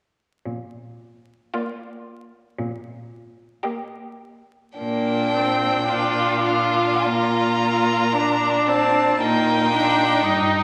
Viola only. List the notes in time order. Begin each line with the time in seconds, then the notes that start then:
1.54 A#3
3.65 A#3
4.78 A#3
5.34 C4
5.88 D4
7.06 A#3
8.14 D4
8.68 C4
9.20 A#3
9.73 D4
10.24 D#4